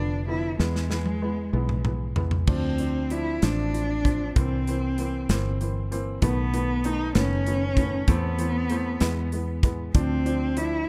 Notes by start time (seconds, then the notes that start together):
Already playing: F1 D3 F3 B3 D4
0.28 D3 F3 B3 E4
0.60 E2 E3 G#3 B3, snare
0.76 snare
0.90 E3 G#3 B3, snare
1.06 high tom
1.22 E3 G#3 B3
1.53 B1 E3 G#3 B3
1.69 mid tom
1.85 E3 G#3 B3, mid tom
2.16 E3 G#3 B3, floor tom
2.31 floor tom
2.47 D2 F3 C4 D4, kick, crash
2.78 F3 C4 D4, closed hi-hat
3.10 F3 C4 D4 E4, closed hi-hat
3.42 A1 F3 C4 D4, snare, closed hi-hat
3.74 F3 C4 D4, closed hi-hat
4.05 F3 C4 D4, kick, closed hi-hat
4.36 C2 E3 A#3 C4, kick, closed hi-hat
4.67 E3 A#3 C4, closed hi-hat
4.98 E3 A#3 C4, closed hi-hat
5.29 G1 E3 A#3 C4, snare, closed hi-hat
5.61 E3 A#3 C4, closed hi-hat
5.91 E3 A#3 C4, closed hi-hat
6.22 B1 D#3 A3 B3, kick, closed hi-hat
6.53 D#3 A3 B3, closed hi-hat
6.84 D#3 A3 B3 D#4, closed hi-hat
7.15 F#1 D#3 A3 B3 C#4, snare, closed hi-hat
7.46 D#3 A3 B3, closed hi-hat
7.77 D#3 A3 B3, kick, closed hi-hat
8.08 E2 E3 A3 B3 C4, kick, closed hi-hat
8.39 E3 A3 C4, closed hi-hat
8.70 E3 A3 C4, closed hi-hat
9.00 E2 E3 G#3 B3, snare, closed hi-hat
9.32 E3 G#3 B3, closed hi-hat
9.63 E3 G#3 B3, kick, closed hi-hat
9.94 D2 F3 C4 D4, kick, closed hi-hat
10.25 F3 C4 D4, closed hi-hat
10.57 F3 C4 D4 E4, closed hi-hat